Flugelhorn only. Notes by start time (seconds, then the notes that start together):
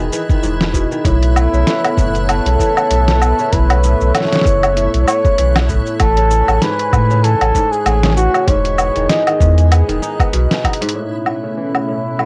1.07 E4
2.30 A4
3.53 B4
4.15 C#5
5.08 C#5
6.00 A4
6.62 B4
7.24 A4
7.72 G#4
8.17 F#4
8.48 C#5
9.10 D#5
10.96 E4